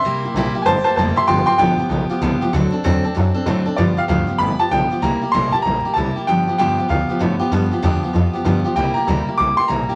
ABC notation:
X:1
M:4/4
L:1/8
Q:"Swing" 1/4=193
K:C
V:1 name="Upright piano"
[ec']3 z [c_a=a] [ca] [ca] [ec'] | [gc'] [gc'] g6 | z8 | d f f2 b a g2 |
_b2 c' a b2 a2 | g2 g2 f2 z2 | z8 | g _b b2 d' c' b2 |]
V:2 name="Steel-string acoustic guitar"
[C,G,_B,EG] [B,EG] [C,G,B,EG] [B,EG] [G,B,EG] [B,EG] [C,G,B,EG] [B,EG] | [G,,D,F,B,FG] [F,B,FG] [G,,D,F,B,FG] [F,B,FG] [F,B,FG] [F,B,FG] [G,,D,F,B,FG] [F,B,FG] | [D,^F,CDA] [CDA] [D,F,CDA] [CDA] [F,CDA] [CDA] [D,F,CDA] [CDA] | [G,,D,F,B,FG] [F,B,FG] [G,,D,F,B,FG] [F,B,FG] [F,B,FG] [F,B,FG] [G,,D,F,B,FG] [F,B,FG] |
[C,G,_B,EG] [B,EG] [C,G,B,EG] [B,EG] [G,B,EG] [B,EG] [C,G,B,EG] [B,EG] | [G,,D,F,B,FG] [F,B,FG] [G,,D,F,B,FG] [F,B,FG] [F,B,FG] [F,B,FG] [G,,D,F,B,FG] [F,B,FG] | [G,,D,F,B,FG] [F,B,FG] [G,,D,F,B,FG] [F,B,FG] [F,B,FG] [F,B,FG] [G,,D,F,B,FG] [F,B,FG] | [C,G,_B,EG] [B,EG] [C,G,B,EG] [B,EG] [G,B,EG] [B,EG] [C,G,B,EG] [B,EG] |]
V:3 name="Upright bass" clef=bass
C,, z _B,,, z G,,, z F,,, z | G,,, z A,,, z B,,, z C,, z | D,, z E,, z ^F,, z A,, z | G,, z D,, z G,,, z B,,, z |
C,, z A,,, z _B,,, z C,, z | G,, z E,, z D,, z A,, z | G,, z E,, z F,, z G,, z | C,, z D,, z C,, z _B,,, z |]